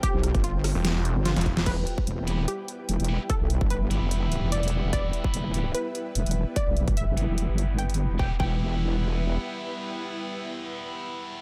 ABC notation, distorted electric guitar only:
X:1
M:4/4
L:1/8
Q:"Swing 16ths" 1/4=147
K:Ephr
V:1 name="Distorted electric guitar"
z8 | z3 [B,EG] z3 [B,EG] | z3 [B,EG]4- [B,EG]- | [B,EG]3 [B,EG] z4 |
z3 [B,EG]4- [B,EG] | [B,EG] [B,EG]6- [B,EG]- | [B,EG]8 |]